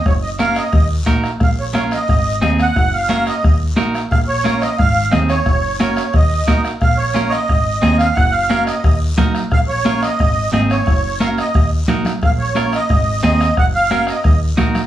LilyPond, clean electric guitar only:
\new Staff \with { instrumentName = "Clean electric guitar" } { \time 4/4 \key bes \minor \tempo 4 = 178 r4 <des' ges' bes'>8 r4. <ees' ges' bes'>8 r8 | r4 <des' f' bes'>8 r4. <c' ees' aes'>8 r8 | r4 <des' ges' bes'>8 r4. <ees' ges' bes'>8 r8 | r4 <des' f' bes'>8 r4. <c' ees' aes'>8 r8 |
r4 <des' ges' bes'>8 r4. <ees' ges' bes'>8 r8 | r4 <des' f' bes'>8 r4. <c' ees' aes'>8 r8 | r4 <des' ges' bes'>8 r4. <ees' ges' bes'>8 r8 | r4 <des' f' bes'>8 r4. <c' ees' aes'>8 r8 |
r4 <des' ges' bes'>8 r4. <ees' ges' bes'>8 r8 | r4 <des' f' bes'>8 r4. <c' ees' aes'>8 r8 | r4 <des' ges' bes'>8 r4. <ees' ges' bes'>8 r8 | }